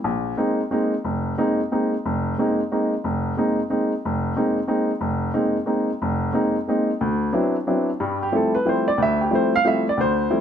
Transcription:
0.04 A#1
0.37 G#3 A#3 C4 D#4
0.71 G#3 A#3 C4 D#4
1.04 F1
1.38 G#3 A#3 C4 D#4
1.72 G#3 A#3 C4 D#4
2.06 F1
2.38 G#3 A#3 C4 D#4
2.72 G#3 A#3 C4 D#4
3.04 F1
3.37 G#3 A#3 C4 D#4
3.70 G#3 A#3 C4 D#4
4.05 F1
4.36 G#3 A#3 C4 D#4
4.68 G#3 A#3 C4 D#4
5.01 F1
5.34 G#3 A#3 C4 D#4
5.66 G#3 A#3 C4 D#4
6.02 F1
6.33 G#3 A#3 C4 D#4
6.67 G#3 A#3 C4 D#4
7.01 D2
7.33 F#3 B3 C4 D4 E4
7.67 F#3 B3 C4 D4 E4
8.00 G2 G3
8.23 G4
8.32 F3 G3 A3 C4 E4 A4
8.55 B4
8.65 F3 G3 A3 C4 E4 C5
8.88 D5
8.98 D2
9.02 E5
9.21 G4
9.31 F3 G3 A3 C4 E4
9.35 C5
9.56 F5
9.65 F3 G3 A3 C4 E4 E5
9.89 D5
9.97 D2 C5
10.30 F3 G3 A3 C4 E4

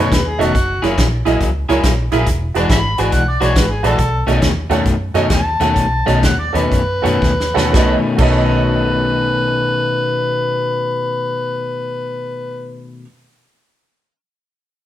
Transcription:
Already playing: F#2 B2 D#3 A3 C#4
0.00 C#5
0.12 D#2 B4, kick, snare, closed hi-hat
0.28 G#4
0.39 E1 B2 D#3 A3 C#4 D#4 F#4 A4 D#5, snare, closed hi-hat
0.55 F#1, kick, snare, closed hi-hat
0.82 F#1 F#3 A#3 E4 G#4 A#4 C#5, snare, closed hi-hat
0.98 A#1, kick, snare, closed hi-hat
1.25 A#1 F#3 A#3 E4 G#4 A#4 D#5, snare, closed hi-hat
1.40 C#2, kick, snare, closed hi-hat
1.69 C#2 F#3 A#3 E4 G#4 A#4 C#5, snare, closed hi-hat
1.83 A#1, kick, snare, closed hi-hat
2.12 A#1 F#3 A#3 E4 G#4 A#4 E5, snare, closed hi-hat
2.27 E1, kick, snare, closed hi-hat
2.54 E1 E3 G#3 D4 F#4 G#4 B4 D5, snare, closed hi-hat
2.70 G#1 E5 G#5 B5, kick, snare, closed hi-hat
2.98 G#1 E3 G#3 D4 F#4 G#4 B4 D5 G#5, snare, closed hi-hat
3.12 B1 F#5, kick, snare, closed hi-hat
3.28 D5
3.40 B1 E3 G#3 D4 F#4 G#4 B4 C#5 D5, snare, closed hi-hat
3.55 G#1 B4, kick, snare, closed hi-hat
3.71 G#4
3.83 A#1 E3 G#3 D4 F#4 G#4 A4 B4 D5, snare, closed hi-hat
3.98 B1, kick, snare, closed hi-hat
4.27 B1 B2 D#3 A3 C#4 F#4 A4 C#5 D#5, snare, closed hi-hat
4.42 D#2, kick, snare, closed hi-hat
4.70 D#2 B2 D#3 A3 C#4 F#4 A4 C#5 F#5, snare, closed hi-hat
4.85 F#2, kick, snare, closed hi-hat
5.14 F#2 B2 D#3 A3 C#4 F#4 A4 C#5 D#5, snare, closed hi-hat
5.30 D#2 A5, kick, snare, closed hi-hat
5.60 D#2 B2 D#3 A3 C#4 F#4 A4 C#5 F#5, snare, closed hi-hat
5.76 B1, kick, snare, closed hi-hat
6.06 B1 B2 D#3 A3 C#4 F#4 A4 C#5 D#5, snare, closed hi-hat
6.23 D#2 F#5, kick, snare, closed hi-hat
6.39 D5
6.53 D#2 B2 D#3 A3 C#4 F#4 A4 B4 C#5 D#5, snare, closed hi-hat
6.71 F#2, kick, snare, closed hi-hat
7.02 F#2 B2 D#3 A3 C#4 F#4 A4 C#5 F#5, closed hi-hat
7.06 snare
7.22 D#2, kick, snare
7.40 snare
7.54 D#2 B2 D#3 A3 C#4 F#4 A4 C#5 F#5, snare
7.71 B1 B2 D#3 F#4 A4 B4 C#5, kick, snare
7.77 A3 C#4 D#5
8.17 B1 B2 D#3 F#4 A4 B4 C#5, kick, crash
8.21 A3 C#4 D#5

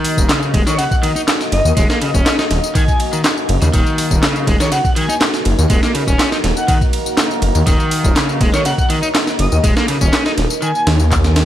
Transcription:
Already playing: D#3 A#3 D#4 F#4 D#5
0.04 open hi-hat, ride
0.17 D#1, kick, tambourine
0.29 C#3, snare, clap, ride, tambourine
0.43 tambourine
0.54 D#1 G#3, kick, ride
0.67 D#3 C#5, snare, tambourine
0.78 C#3 F#5, ride, tambourine
0.91 F#5, kick, tambourine
1.03 D#3, ride
1.16 D#4, tambourine
1.28 snare, clap, ride, tambourine
1.41 snare, tambourine
1.52 F#1 D#5, ride
1.65 D#2, tambourine
1.77 D#1 G#3, kick, ride, tambourine
1.90 A#3, snare, tambourine
2.01 C#3, ride
2.14 D#1 C#4, kick, tambourine
2.26 snare, clap, ride, tambourine
2.39 D#4, snare, tambourine
2.50 D#1, snare, ride
2.64 tambourine
2.75 D#3 G#5, kick, ride, tambourine
2.88 G#5, kick, tambourine
3.00 ride
3.13 D#3, tambourine
3.24 snare, clap, ride, tambourine
3.37 tambourine
3.49 F#1, ride
3.62 D#2 C#3, ride, tambourine
3.73 D#1 D#3 A#4, kick, ride, tambourine
3.87 tambourine
3.98 open hi-hat, ride
4.11 D#1, kick, tambourine
4.23 C#3, snare, clap, ride, tambourine
4.36 tambourine
4.47 D#1 G#3, kick, ride
4.60 D#3 C#5, snare, tambourine
4.72 C#3 F#5, ride, tambourine
4.85 F#5, kick, tambourine
4.96 D#3 G#5, ride
5.09 D#4, tambourine
5.21 snare, clap, ride, tambourine
5.34 snare, tambourine
5.45 F#1, ride
5.58 D#2, tambourine
5.70 D#1 G#3, kick, ride, tambourine
5.83 A#3, snare, tambourine
5.95 C#3, ride
6.07 D#1 C#4, kick, tambourine
6.19 snare, clap, ride, tambourine
6.32 D#4, snare, tambourine
6.44 D#1, snare, ride
6.57 F#5, tambourine
6.68 D#3 F#5, kick, ride, tambourine
6.81 kick, tambourine
6.93 ride
7.06 tambourine
7.17 snare, clap, ride, tambourine
7.31 tambourine
7.42 F#1, ride
7.55 D#2, ride, tambourine
7.67 D#1 D#3, kick, ride, tambourine
7.80 tambourine
7.91 open hi-hat, ride
8.04 D#1, kick, tambourine
8.16 C#3, snare, clap, ride, tambourine
8.29 tambourine
8.41 D#1 G#3, kick, ride
8.53 D#3 C#5, snare, tambourine
8.65 C#3 F#5, ride, tambourine
8.78 F#5, kick, tambourine
8.90 D#3, ride
9.02 D#4, tambourine
9.15 snare, clap, ride, tambourine
9.27 snare, tambourine
9.39 F#1 D#5, ride
9.52 D#2, tambourine
9.64 D#1 G#3, kick, ride, tambourine
9.77 A#3, snare, tambourine
9.88 C#3, ride
10.01 D#1 C#4, kick, tambourine
10.13 snare, clap, ride, tambourine
10.26 D#4, snare, tambourine
10.38 D#1, snare, ride
10.50 tambourine
10.62 D#3 G#5, tambourine
10.75 G#5, tambourine
10.87 D#2, snare, ride
11.00 tambourine
11.11 kick, clap, ride, tambourine
11.24 snare, tambourine
11.36 snare, ride

